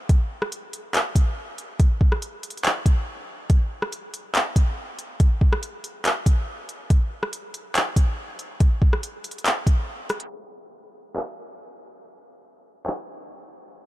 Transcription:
0.09 kick, closed hi-hat
0.42 cross-stick
0.52 closed hi-hat
0.73 closed hi-hat
0.94 clap, closed hi-hat
1.15 kick, closed hi-hat
1.58 closed hi-hat
1.80 kick, closed hi-hat
2.01 kick
2.12 cross-stick
2.22 closed hi-hat
2.43 closed hi-hat
2.50 closed hi-hat
2.57 closed hi-hat
2.64 clap, closed hi-hat
2.86 kick, closed hi-hat
3.50 kick, closed hi-hat
3.82 cross-stick
3.92 closed hi-hat
4.14 closed hi-hat
4.35 clap, closed hi-hat
4.56 kick, closed hi-hat
4.99 closed hi-hat
5.20 kick, closed hi-hat
5.41 kick
5.53 cross-stick
5.63 closed hi-hat
5.84 closed hi-hat
6.05 clap, closed hi-hat
6.26 kick, closed hi-hat
6.69 closed hi-hat
6.90 kick, closed hi-hat
7.23 cross-stick
7.33 closed hi-hat
7.54 closed hi-hat
7.75 clap, closed hi-hat
7.96 kick, closed hi-hat
8.39 closed hi-hat
8.60 kick, closed hi-hat
8.82 kick
8.93 cross-stick
9.03 closed hi-hat
9.24 closed hi-hat
9.31 closed hi-hat
9.38 closed hi-hat
9.45 clap, closed hi-hat
9.67 kick, closed hi-hat
10.09 cross-stick, closed hi-hat
10.20 closed hi-hat
11.16 clap
12.86 clap

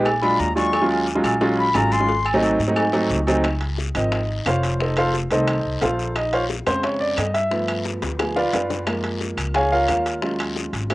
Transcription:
Already playing: A#1
0.05 cowbell, low agogo, long guiro, claves
0.22 F#3 G#3 D4 F4 B5, cowbell, low agogo
0.39 D#2 A#5, cowbell, short guiro
0.56 F#3 G#3 D4 F4 C#6, low agogo, short guiro
0.73 cowbell, low agogo, long guiro, claves
0.81 F#3 G#3 C#4 F4
0.90 low agogo
1.07 cowbell, short guiro
1.15 F#3 G#3 C#4 F4
1.24 A#1, cowbell, low agogo, short guiro, claves
1.41 F#3 G#3 C#4 F4, cowbell, low agogo, long guiro
1.59 B5
1.74 G#1 F#3 G#3 C#4 F4 A#5, cowbell, low timbale, low agogo, short guiro, claves
1.92 C6, low agogo, short guiro
2.00 F#3 G#3 C#4 F4
2.09 cowbell, long guiro
2.25 low agogo, claves
2.34 F#3 A3 C4 D#4
2.43 cowbell, low agogo, short guiro
2.59 G#2, short guiro
2.68 F#3 A3 C4 D#4
2.76 cowbell, low agogo, long guiro, claves
2.93 F#3 A3 C4 D#4, cowbell, low agogo
3.10 C#2, cowbell, short guiro
3.27 F#3 A3 C4 D#4, low agogo, short guiro
3.44 high bongo, high timbale, long guiro, claves
3.61 high bongo, high timbale
3.78 high bongo, short guiro
3.95 G#1 D#3 F3 C4 D#4 D#5, high bongo, high timbale, short guiro, claves
4.12 high bongo, high timbale, long guiro
4.46 F1 F4 C5 C#5 F5, high bongo, low bongo, high timbale, low timbale, short guiro, claves
4.63 high bongo, high timbale, short guiro
4.80 D#4 A4 C5 D#5, high bongo, long guiro
4.97 F4 A4 C5 F5, high bongo, high timbale, claves
5.14 high bongo, short guiro
5.31 C2 D#3 A3 C4 D#4 A4 C5 D#5, high bongo, high timbale, short guiro
5.47 high bongo, high timbale, long guiro, claves
5.65 C2
5.81 A#1 F4 A4 C5 F5, high bongo, low bongo, high timbale, low timbale, short guiro
5.99 high bongo, short guiro
6.16 D#4 D#5, high bongo, high timbale, long guiro, claves
6.33 F4 C5 C#5 F5, high bongo, high timbale
6.50 high bongo, short guiro
6.66 F2 C#3 G#3 C4 C5, high bongo, high timbale, short guiro, claves
6.83 C#5, high bongo, high timbale, long guiro
7.00 D5
7.17 G2 D#5, high bongo, low bongo, high timbale, low timbale, short guiro, claves
7.34 E5, high bongo, high timbale, short guiro
7.51 F3 A3 B3, high bongo, long guiro
7.68 high bongo, high timbale, claves
7.85 high bongo, short guiro
8.02 D2, high bongo, high timbale, short guiro
8.19 F3 A3 B3 G#4 G#5, high bongo, high timbale, long guiro, claves
8.36 F4 B4 D5 F5, low bongo
8.53 F#2 F4 B4 D5 F5, low bongo, high timbale, low timbale, short guiro
8.70 low bongo, short guiro
8.86 F3 G#3 A#3, high bongo, high timbale, long guiro, claves
9.04 high bongo, high timbale
9.21 high bongo, short guiro
9.37 C#2, high bongo, high timbale, short guiro, claves
9.54 G#4 C#5 F5 G#5, high bongo, high timbale, long guiro
9.72 F4 A#4 C#5 F5
9.88 D#2 F4 A#4 C#5 F5, high bongo, low bongo, high timbale, short guiro, claves
10.06 high bongo, high timbale, short guiro
10.22 F#3 G#3 C#4 F4, high bongo, long guiro
10.39 high bongo, high timbale, claves
10.56 high bongo, short guiro
10.73 G#1, high bongo, high timbale, short guiro
10.90 F#3 A#3, high bongo, high timbale, long guiro, claves

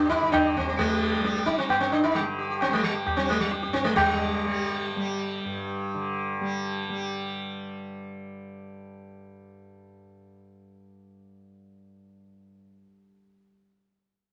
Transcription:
Already playing: G2 D3 G3
0.00 G4
0.09 D#4, tabla ge
0.20 D3 G4
0.32 D4, tabla na, tabla ge
0.45 G4
0.57 C4, tabla ge
0.68 G3 G4
0.79 G#3, tabla tin, tabla ge
0.90 G4
1.02 G4
1.13 G4
1.21 G3 G4, tabla te
1.35 G4, tabla te
1.46 D#4, tabla ke
1.58 C4, tabla te
1.69 G2 B3, tabla na
1.80 C4
1.92 D4, tabla na
2.04 D#4
2.15 G3, tabla na
2.19 D3
2.38 G4
2.50 G4
2.61 C4, tabla na
2.68 G3
2.73 G#3
2.83 G3
2.94 G4
3.06 G4, tabla na, tabla ge
3.17 G3 C4
3.29 G#3, tabla te
3.40 G3
3.51 G4, tabla te
3.62 G4, tabla te
3.68 G2
3.73 C4, tabla ke
3.84 G#3, tabla te
3.96 D3 G3, tabla na, tabla ge
4.46 G3
4.96 G3
5.45 G2
5.94 D3
6.41 G3
6.89 G3

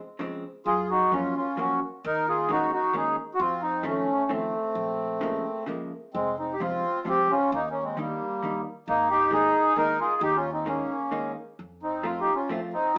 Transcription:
0.19 C#3 F3 G#3 C4
0.66 F#2 F4 G#4
0.90 D#4 F#4
1.12 F3 F#3 A#3 C#4 F4
1.37 C#4 F4
1.57 F3 F#3 A#3 C#4 F#4
2.04 D#2 D#4 A#4
2.28 F4 G#4
2.49 D#3 G#3 A#3 C#4 D#4 F#4
2.72 D#4 F#4
2.93 D#3 G#3 A#3 C#4 D#4 G#4
3.34 F#4
3.39 F2 C4 F4
3.62 C4 D#4
3.83 D#3 F3 A3 C4 C#4
4.29 D#3 F3 A3 C4
4.75 A#1
5.21 C#3 F3 G#3 A#3
5.66 C#3 F3 G#3 A#3
6.14 F1 G#3 C4
6.38 C4 D#4
6.53 G4
6.60 F3 G3 G#3 C4 F4
7.05 F3 G3 G#3 C4
7.09 G4
7.31 C#4 F4
7.52 D#2 A#3 D#4
7.70 A#3 C#4
7.83 G#3 C4
7.97 D#3 G3 A#3 D#4
8.42 D#3 G3 A#3 D#4
8.88 G#1 A#3 D#4
9.10 D#4 G4
9.31 D#3 G#3 A#3 D#4 G#4
9.76 D#3 G#3 A#3 D#4 A#4
10.00 F4 G#4
10.21 D#2 D#4 G4
10.36 C#4 F4
10.53 C4 D#4
10.66 D#3 G#3 A#3 C#4 D#4
11.11 D#3 G#3 A#3 D#4
11.59 F2
11.83 C4 D#4
12.03 F3 A3 C4 F4
12.20 D#4 G4
12.35 C#4 F4
12.49 F3 A3 C4 F4
12.73 C4 D#4
12.94 C4

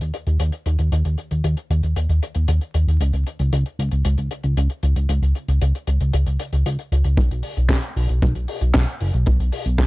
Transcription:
0.01 D#2, closed hi-hat
0.14 closed hi-hat
0.27 D#2, closed hi-hat
0.40 D#2, closed hi-hat
0.52 closed hi-hat
0.66 D#2, closed hi-hat
0.79 D#2, closed hi-hat
0.92 D#2, closed hi-hat
1.05 D#2, closed hi-hat
1.18 closed hi-hat
1.31 D#2, closed hi-hat
1.44 D#2, closed hi-hat
1.57 closed hi-hat
1.70 D#2, closed hi-hat
1.83 D#2, closed hi-hat
1.96 D#2, closed hi-hat
2.09 D#2, closed hi-hat
2.23 closed hi-hat
2.35 D#2, closed hi-hat
2.48 D#2, closed hi-hat
2.61 closed hi-hat
2.74 D#2, closed hi-hat
2.88 D#2, closed hi-hat
3.00 C#2, closed hi-hat
3.13 C#2, closed hi-hat
3.27 closed hi-hat
3.39 C#2, closed hi-hat
3.53 C#2, closed hi-hat
3.66 closed hi-hat
3.79 C#2, closed hi-hat
3.91 C#2, closed hi-hat
4.05 C#2, closed hi-hat
4.18 C#2, closed hi-hat
4.31 closed hi-hat
4.44 C#2, closed hi-hat
4.57 C#2, closed hi-hat
4.70 closed hi-hat
4.83 C#2, closed hi-hat
4.96 C#2, closed hi-hat
5.09 C#2, closed hi-hat
5.22 C#2, closed hi-hat
5.35 closed hi-hat
5.48 C#2, closed hi-hat
5.61 C#2, closed hi-hat
5.75 closed hi-hat
5.87 C#2, closed hi-hat
6.00 C#2, closed hi-hat
6.13 C#2, closed hi-hat
6.26 C#2, closed hi-hat
6.39 closed hi-hat
6.53 C#2, closed hi-hat
6.66 C#2, closed hi-hat
6.79 closed hi-hat
6.92 C#2, closed hi-hat
7.04 C#2, closed hi-hat
7.17 B1, kick, closed hi-hat
7.31 B1, closed hi-hat
7.43 open hi-hat
7.57 B1, closed hi-hat
7.69 B1, kick, snare, clap, closed hi-hat
7.82 closed hi-hat
7.96 B1, open hi-hat
8.09 B1, closed hi-hat
8.22 B1, kick, closed hi-hat
8.35 B1, closed hi-hat
8.48 open hi-hat
8.61 B1, closed hi-hat
8.74 B1, kick, snare, clap, closed hi-hat
8.88 closed hi-hat
9.00 F#1, open hi-hat
9.14 B1, closed hi-hat
9.26 B1, kick, closed hi-hat
9.40 B1, closed hi-hat
9.52 open hi-hat
9.66 B1, closed hi-hat
9.78 B1, kick, snare, clap, closed hi-hat

